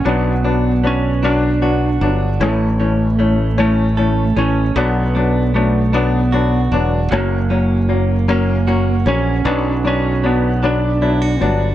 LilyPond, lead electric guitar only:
\new Staff \with { instrumentName = "Lead electric guitar" } { \time 6/8 \key b \minor \tempo 4. = 51 b4 cis'8 d'4 r8 | a4. a4 cis'8 | b4 a8 b4 r8 | ais4. ais4 cis'8~ |
cis'8 cis'8 b8 d'4 r8 | }